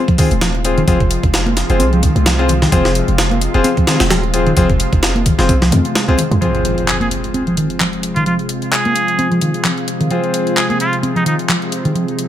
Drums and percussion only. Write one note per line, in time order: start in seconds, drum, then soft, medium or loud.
0.08 kick loud
0.08 closed hi-hat soft
0.18 kick loud
0.18 closed hi-hat medium
0.18 open hi-hat medium
0.31 closed hi-hat soft
0.31 high conga medium
0.41 snare loud
0.41 closed hi-hat medium
0.41 closed hi-hat soft
0.55 closed hi-hat soft
0.65 closed hi-hat medium
0.78 closed hi-hat soft
0.88 kick loud
0.88 closed hi-hat medium
0.88 closed hi-hat soft
1.00 kick loud
1.00 closed hi-hat soft
1.11 closed hi-hat medium
1.23 kick medium
1.23 closed hi-hat soft
1.34 snare loud
1.34 closed hi-hat soft
1.34 closed hi-hat medium
1.47 closed hi-hat soft
1.57 snare soft
1.57 closed hi-hat medium
1.70 closed hi-hat soft
1.80 closed hi-hat soft
1.80 closed hi-hat medium
1.93 closed hi-hat soft
2.03 kick loud
2.03 closed hi-hat medium
2.03 low conga medium
2.15 closed hi-hat soft
2.15 high conga medium
2.26 snare loud
2.26 closed hi-hat medium
2.26 closed hi-hat soft
2.39 closed hi-hat soft
2.48 closed hi-hat medium
2.48 low conga medium
2.62 snare medium
2.62 closed hi-hat soft
2.72 kick loud
2.72 closed hi-hat medium
2.72 closed hi-hat soft
2.85 snare medium
2.85 closed hi-hat soft
2.95 closed hi-hat medium
3.08 closed hi-hat soft
3.18 snare loud
3.18 closed hi-hat medium
3.18 closed hi-hat soft
3.31 closed hi-hat soft
3.41 closed hi-hat medium
3.54 closed hi-hat soft
3.64 closed hi-hat medium
3.64 closed hi-hat soft
3.77 kick loud
3.77 closed hi-hat soft
3.87 snare loud
3.87 closed hi-hat medium
4.00 snare loud
4.00 closed hi-hat medium
4.00 closed hi-hat soft
4.00 high conga medium
4.10 snare loud
4.10 closed hi-hat medium
4.10 closed hi-hat soft
4.24 closed hi-hat soft
4.34 closed hi-hat medium
4.47 closed hi-hat soft
4.57 kick loud
4.57 closed hi-hat medium
4.57 closed hi-hat soft
4.70 kick loud
4.70 closed hi-hat soft
4.80 closed hi-hat medium
4.93 kick loud
4.93 closed hi-hat soft
5.03 snare loud
5.03 closed hi-hat medium
5.03 closed hi-hat soft
5.16 closed hi-hat soft
5.26 kick loud
5.26 closed hi-hat medium
5.26 low conga medium
5.39 snare soft
5.39 closed hi-hat soft
5.49 kick loud
5.49 closed hi-hat soft
5.49 closed hi-hat medium
5.62 snare medium
5.62 closed hi-hat soft
5.72 closed hi-hat medium
5.72 high conga medium
5.72 low conga medium
5.84 closed hi-hat soft
5.84 high conga medium
5.95 snare loud
5.95 closed hi-hat soft
5.95 closed hi-hat medium
6.08 closed hi-hat soft
6.18 closed hi-hat medium
6.18 low conga medium
6.32 closed hi-hat soft
6.42 closed hi-hat soft
6.55 closed hi-hat soft
6.65 closed hi-hat medium
6.78 closed hi-hat soft
6.88 clap loud
6.88 closed hi-hat soft
7.01 closed hi-hat soft
7.11 closed hi-hat medium
7.24 closed hi-hat soft
7.34 closed hi-hat soft
7.47 closed hi-hat soft
7.57 closed hi-hat medium
7.70 closed hi-hat soft
7.80 clap loud
7.80 closed hi-hat soft
7.93 closed hi-hat soft
8.03 closed hi-hat medium
8.16 closed hi-hat soft
8.26 closed hi-hat soft
8.39 closed hi-hat soft
8.49 closed hi-hat medium
8.62 closed hi-hat soft
8.73 clap loud
8.73 closed hi-hat soft
8.85 closed hi-hat soft
8.96 closed hi-hat medium
9.08 closed hi-hat soft
9.19 closed hi-hat soft
9.32 closed hi-hat soft
9.41 closed hi-hat medium
9.54 closed hi-hat soft
9.64 clap loud
9.64 closed hi-hat soft
9.78 closed hi-hat soft
9.88 closed hi-hat medium
10.01 closed hi-hat soft
10.11 closed hi-hat soft
10.24 closed hi-hat soft
10.34 closed hi-hat medium
10.47 closed hi-hat soft
10.57 clap loud
10.57 closed hi-hat soft
10.70 closed hi-hat soft
10.80 closed hi-hat medium
10.93 closed hi-hat soft
11.03 closed hi-hat soft
11.16 closed hi-hat soft
11.26 closed hi-hat medium
11.39 closed hi-hat soft
11.49 clap loud
11.49 closed hi-hat soft
11.62 closed hi-hat soft
11.72 closed hi-hat medium
11.85 closed hi-hat soft
11.96 closed hi-hat soft
12.08 closed hi-hat soft
12.19 closed hi-hat medium